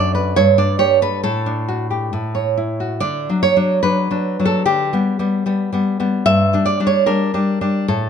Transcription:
Already playing: F#2 D4 A4 D5
0.15 B4
0.36 G2 C#5
0.58 D4 D5
0.79 G4 C#5
1.02 A4 B4
1.23 A2 A4
1.46 D4
1.68 F#4
1.91 G4
2.13 A2
2.35 C#5
2.57 E4
2.80 F#4
3.00 D3 D5
3.29 F#3 D4
3.43 C#5
3.56 F#3 D4
3.83 F#3 D4 B4
4.11 F#3 D4
4.39 F#3 D4
4.45 A4
4.66 D3 G4
4.93 G3 B3
5.19 G3 B3
5.46 G3 B3
5.73 G3 B3
6.00 G3 B3
6.26 G2 E5
6.53 G3 D4
6.66 D5
6.80 G3 D4
6.87 C#5
7.06 G3 D4 A#4
7.34 G3 D4
7.61 G3 D4
7.88 A2 A4

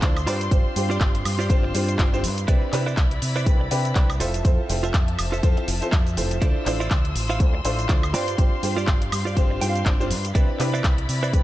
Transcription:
Already playing: F3 C6 E6
0.02 D2 D4 E4 F4 A4 C5 D5, kick, clap, closed hi-hat, shaker
0.17 high woodblock, shaker
0.26 G2 C4 D4 F4 G4 C5 D5, open hi-hat, shaker
0.41 closed hi-hat, shaker
0.51 G1 C4 D4 F4 G4 C5, kick, closed hi-hat, shaker
0.76 G2 C4 D4 F4 G4 C5, muted clean electric guitar stroke, open hi-hat, shaker
0.90 F4 G4 C5 D5, shaker
1.00 G1, kick, clap, closed hi-hat, high woodblock, shaker
1.15 closed hi-hat
1.25 G2, open hi-hat, high woodblock, shaker
1.39 F4 G4 C5 D5, shaker
1.49 G1 C4 D4 F4 G4 C5, kick, closed hi-hat, shaker
1.63 muted clean electric guitar stroke
1.74 G2 C4 D4 F4 G4 C5, muted clean electric guitar stroke, open hi-hat, shaker
1.88 muted clean electric guitar stroke, closed hi-hat, shaker
1.98 G1 C4 D4 F4 G4 C5 D5, kick, clap, closed hi-hat, shaker
2.13 C4 D4 F4 G4 C5, shaker
2.23 G2, muted clean electric guitar stroke, open hi-hat, shaker
2.38 closed hi-hat, shaker
2.48 C2 C4 D4 E4 G4 B4 C5 D5 B5, kick, closed hi-hat, shaker
2.72 C3 C4 D4 E4 G4 B4, muted clean electric guitar stroke, clap, open hi-hat, shaker
2.86 E4 B4 C5 D5, shaker
2.97 C2, kick, clap, closed hi-hat, high woodblock, shaker
3.11 closed hi-hat
3.22 C3, open hi-hat, shaker
3.36 E4 B4 C5 D5, shaker
3.46 C2 C4 D4 E4 G4 B4, kick, closed hi-hat, shaker
3.60 muted clean electric guitar stroke
3.71 C3 C4 D4 E4 G4 B4, muted clean electric guitar stroke, open hi-hat, shaker
3.85 muted clean electric guitar stroke, closed hi-hat, shaker
3.95 C2 C4 D4 E4 G4 B4 C5 D5, kick, clap, closed hi-hat, shaker
4.10 high woodblock, shaker
4.20 F1 F3 C4 E4 F4 A4 C5 E5 A5, open hi-hat, shaker
4.34 closed hi-hat, shaker
4.45 F2 C4 E4 F4 A4 C5, kick, closed hi-hat, shaker
4.69 F1 C4 F4 A4 C5 E5, muted clean electric guitar stroke, open hi-hat, shaker
4.83 F4 A4 C5 E5, closed hi-hat, shaker
4.94 F2, kick, clap, closed hi-hat, high woodblock, shaker
5.08 closed hi-hat
5.19 F1, open hi-hat, high woodblock, shaker
5.32 F4 A4 C5 E5, shaker
5.43 F2 C4 E4 F4 A4 C5, kick, closed hi-hat, shaker
5.57 muted clean electric guitar stroke, muted fingered electric bass stroke, closed hi-hat
5.68 F1, muted clean electric guitar stroke, open hi-hat, shaker
5.82 C4 E4 F4 A4 C5, muted clean electric guitar stroke, closed hi-hat, shaker
5.92 F2 F4 A4 C5 E5, kick, clap, closed hi-hat, shaker
6.07 closed hi-hat, shaker
6.17 F1 C4 E4 F4 A4 C5, muted clean electric guitar stroke, open hi-hat, shaker
6.31 closed hi-hat, shaker
6.41 D2 D4 E4 F4 A4 C5 D5 C6 E6, kick, closed hi-hat, shaker
6.66 A1 D4 E4 F4 A4 C5, muted clean electric guitar stroke, clap, open hi-hat, shaker
6.80 E4 F4 C5 D5, shaker
6.91 D2, kick, clap, closed hi-hat, high woodblock, shaker
7.05 closed hi-hat
7.15 A1, open hi-hat, shaker
7.30 E4 F4 C5 F5, shaker
7.40 D2 D4 E4 F4 A4 C5, kick, closed hi-hat, shaker
7.54 muted clean electric guitar stroke
7.64 A1 D4 E4 F4 A4 C5, muted clean electric guitar stroke, open hi-hat, shaker
7.78 muted clean electric guitar stroke, closed hi-hat, shaker
7.89 D4 E4 F4 A4 C5 D5, kick, clap, closed hi-hat, shaker
8.03 high woodblock, shaker
8.13 G2 C4 D4 F4 G4 C5 D5 F5, open hi-hat, shaker
8.28 closed hi-hat, shaker
8.38 G1 C4 D4 F4 G4 C5, kick, closed hi-hat, shaker
8.62 G2 C4 D4 F4 G4 C5, muted clean electric guitar stroke, open hi-hat, shaker
8.77 F4 G4 C5 D5, shaker
8.87 G1, kick, clap, closed hi-hat, high woodblock, shaker
9.02 closed hi-hat
9.12 G2, open hi-hat, high woodblock, shaker
9.25 F4 G4 C5 D5, shaker
9.36 G1 C4 D4 F4 G4 C5, kick, closed hi-hat, shaker
9.50 muted clean electric guitar stroke
9.61 G2 C4 D4 F4 G4 C5 G5, muted clean electric guitar stroke, open hi-hat, shaker
9.70 F5
9.75 muted clean electric guitar stroke, closed hi-hat, shaker
9.85 G1 C4 D4 F4 G4 C5 D5, kick, clap, closed hi-hat, shaker
10.00 C4 D4 F4 G4 C5, shaker
10.10 G2, muted clean electric guitar stroke, open hi-hat, shaker
10.25 closed hi-hat, shaker
10.35 C2 C4 D4 E4 G4 B4 C5 D5 B5, kick, closed hi-hat, shaker
10.59 C3 C4 D4 E4 G4 B4, muted clean electric guitar stroke, clap, open hi-hat, shaker
10.73 E4 B4 C5 D5, shaker
10.84 C2, kick, clap, closed hi-hat, high woodblock, shaker
10.98 closed hi-hat
11.09 C3, open hi-hat, shaker
11.23 E4 B4 C5 D5, shaker
11.33 C2 C4 D4 E4 G4 B4, kick, closed hi-hat, shaker

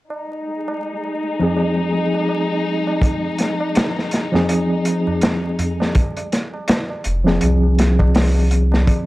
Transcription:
0.09 G#3 D#4 G#4, tabla na
0.32 tabla na
0.68 tabla na
0.83 tabla na
1.05 tabla na
1.40 F3 C4 G#4, tabla na, tabla ge
1.57 tabla na
1.78 tabla na
2.14 tabla na
2.29 tabla na
2.51 tabla na
2.87 tabla na
3.02 kick, closed hi-hat, tabla na
3.24 tabla na
3.38 snare, closed hi-hat
3.60 tabla na
3.75 snare, closed hi-hat, tabla na
3.97 snare, tabla na
4.11 snare, closed hi-hat
4.32 F3 C4 G#4, snare, tabla na, tabla ge
4.49 closed hi-hat, tabla na
4.70 tabla na
4.85 closed hi-hat
5.07 tabla na, tabla ge
5.21 snare, closed hi-hat, tabla na
5.43 tabla na
5.59 closed hi-hat, tabla ge
5.80 snare, tabla na
5.95 kick, closed hi-hat, tabla na
6.17 closed hi-hat, tabla na
6.32 snare, closed hi-hat
6.54 tabla na
6.68 snare, closed hi-hat, tabla na
6.90 tabla na
7.04 F1, closed hi-hat
7.24 F3 C4 G#4, snare, tabla na, tabla ge
7.41 C2, closed hi-hat, tabla na
7.63 tabla na
7.79 snare, closed hi-hat
7.99 kick, tabla na
8.15 snare, open hi-hat, tabla na
8.36 tabla na
8.51 closed hi-hat
8.72 snare, tabla na
8.87 kick, closed hi-hat, tabla na

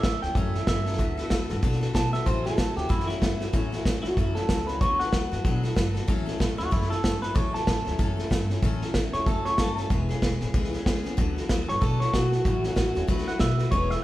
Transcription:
0.03 A1 F#3 A3 C#4 A4 E5, kick, snare, hi-hat pedal
0.22 D2 F#3 A3 C#4 A4 G5, snare
0.35 F#2 A2 E3 F#3 A3 C#4 A4 E5, kick, snare
0.54 F#3 A3 C#4 A4, snare
0.67 G2 F#3 A3 C#4 A4 E5, kick, snare, hi-hat pedal
0.86 F#3 A3 C#4 A4, snare
0.93 snare
0.98 D2 D3 F#3 B3 F#4 A4, kick, snare
1.17 B3 F#4 A4, snare
1.30 D2 F#3 B3 F#4 A4, kick, snare, hi-hat pedal
1.49 G2 B3 F#4 A4, snare
1.62 B2 D3 F#3 B3 F#4 A4, kick, snare
1.72 snare
1.81 B3 F#4 A4, snare
1.94 B2 F#3 B3 F#4 A4 A5, kick, snare, hi-hat pedal
2.13 B3 F#4 A4 E5, snare
2.26 A1 A2 E3 F#3 A3 C#4 F#4 C5, kick, snare
2.44 F#3 A3 C#4 F#4 A4, snare
2.57 A1 F#3 A3 C#4 F#4, kick, snare, hi-hat pedal
2.77 D2 F#3 A3 C#4 F#4 G4, snare
2.89 F#2 A2 E3 F#3 A3 C#4 E4 F#4, kick, snare
3.00 snare
3.07 F#3 A3 C#4 E4 F#4, snare
3.20 G2 F#3 A3 C#4 F#4, kick, snare, hi-hat pedal
3.40 F#3 A3 C#4 F#4, snare
3.53 A1 A2 E3 F#3 A3 C#4 F#4, kick, snare
3.72 F#3 A3 C#4 F#4, snare
3.85 A1 F#3 A3 C#4 F#4, kick, snare, hi-hat pedal
4.03 D2 A3 C#4 F#4, snare
4.07 F#3
4.17 F#2 A2 E3 F#3 A3 C#4 E4 F#4, kick, snare
4.35 F#3 A3 C#4 F#4 A4, snare
4.49 C#2 F#3 A3 C#4 F#4, kick, snare, hi-hat pedal
4.67 A3 C#4 F#4 B4, snare
4.71 F#3
4.81 D2 D3 F#3 B3 F#4 A4 C#5, kick, snare
4.99 B3 F#4 A4 F#5, snare
5.12 D2 F#3 B3 F#4 A4, kick, snare, hi-hat pedal
5.32 G2 B3 F#4 A4, snare
5.45 B2 D3 F#3 B3 F#4 A4, kick, snare
5.63 B3 F#4 A4, snare
5.75 G1 F#3 B3 F#4 A4, kick, snare, hi-hat pedal
5.94 B3 F#4 A4, snare
6.07 A1 A2 E3 F#3 A3 C#4 A4, kick, snare
6.26 F#3 A3 C#4 A4, snare
6.39 A1 F#3 A3 C#4 A4, kick, snare, hi-hat pedal
6.58 D2 F#3 A3 C#4 F#4 A4, snare
6.71 F#2 A2 E3 F#3 A3 C#4 E4 A4, kick, snare
6.82 snare
6.90 F#3 A3 C#4 A4, snare
7.03 G2 F#3 A3 C#4 A4, kick, snare, hi-hat pedal
7.22 F#3 A3 C#4 A4 B4, snare
7.35 A1 A2 E3 F#3 A3 C#4 A4 C#5, kick, snare
7.54 F#3 A3 C#4 A4 A5, snare
7.67 A1 F#3 A3 C#4 A4, kick, snare, hi-hat pedal
7.85 D2 F#3 A3 C#4 A4, snare
7.99 F#2 A2 E3 F#3 A3 C#4 A4, kick, snare
8.17 F#3 A3 C#4 A4, snare
8.30 G2 F#3 A3 C#4 A4, kick, snare, hi-hat pedal
8.50 F#3 A3 C#4 A4, snare
8.62 A1 A2 E3 F#3 A3 C#4 A4, kick, snare
8.82 F#3 A3 C#4 A4, snare
8.94 A1 F#3 A3 C#4 A4, kick, snare, hi-hat pedal
9.13 D2 F#3 A3 C#4 A4 C#5, snare
9.26 F#2 A2 E3 F#3 A3 C#4 A4, kick, snare
9.45 F#3 A3 C#4 A4 C#5, snare
9.58 G2 F#3 A3 C#4 A4, kick, snare, hi-hat pedal
9.77 F#3 A3 C#4 A4, snare
9.90 E1 E3 G#3 B3 C#4 G#4, kick, snare
10.09 B3 C#4 G#4, snare
10.22 E1 G#3 B3 C#4 G#4, kick, snare, hi-hat pedal
10.41 A1 B3 C#4 G#4, snare
10.54 C#2 E3 G#3 B3 C#4 G#4, kick, snare
10.64 snare
10.73 B3 C#4 G#4, snare
10.86 C#2 G#3 B3 C#4 G#4, kick, snare, hi-hat pedal
11.04 B3 C#4 G#4, snare
11.17 D2 D3 F#3 B3 F#4 A4, kick, snare
11.36 B3 F#4 A4, snare
11.49 D2 F#3 B3 F#4 A4, kick, snare, hi-hat pedal
11.68 G2 B3 F#4 A4 C#5, snare
11.81 B2 D3 F#3 B3 F#4 A4, kick, snare
12.00 B3 F#4 A4 C#5, snare
12.13 B2 F#3 B3 F#4 A4, kick, snare, hi-hat pedal
12.32 B3 F#4 A4, snare
12.45 A1 A2 E3 F#3 A3 C#4 F#4, kick, snare
12.64 F#3 A3 C#4 F#4, snare
12.76 A1 F#3 A3 C#4 F#4, kick, snare, hi-hat pedal
12.95 E2 F#3 A3 C#4 F#4, snare
13.08 D2 D3 F#3 A3 F#4 B4, kick, snare
13.18 snare
13.27 A3 F#4 B4 F#5, snare
13.39 B2 F#3 A3 F#4 B4 E5, kick, snare, hi-hat pedal
13.59 A3 F#4 B4, snare
13.71 E1 E3 G#3 B3 C#4 B4 C#5, kick, snare
13.90 B3 C#4 B4 E5, snare

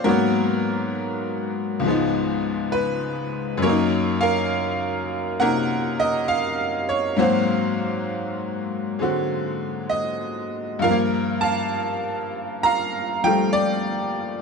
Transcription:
0.04 G#2 F#3 A#3 F#4 A#4
0.09 B3
1.80 C#2 G#2
1.84 F3 G#3 B3
1.90 D#4
2.72 B4
3.58 F#2
3.62 F#3 A#3 A#4 C#5
3.69 D#4
4.21 A#4 F5
5.40 C3 A#3 D#4 A#4 F#5
6.00 D#5
6.28 F5
6.89 C#5
7.17 G#2 F#3 A#3 C4 F#4 C5
7.22 F5
8.99 D3 G#3 C4 F#4
9.90 D#5
10.79 G2 F3 F5
10.84 A#4
10.90 A#3
11.41 F5 A5
12.63 F5 A#5
13.24 F3 G3 A3 G5
13.53 D5

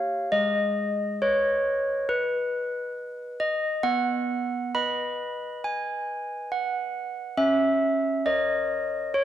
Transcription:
Already playing: G4 C#5 F5
0.32 G#3 D#5
1.22 B4 C#5 D#5
2.09 B4
3.40 D#5
3.83 B3 F#5
4.75 B4 D#5 B5
5.64 G#5
6.52 F#5
7.37 C#4 E5
8.26 A#4 C#5 D#5
9.14 C#5

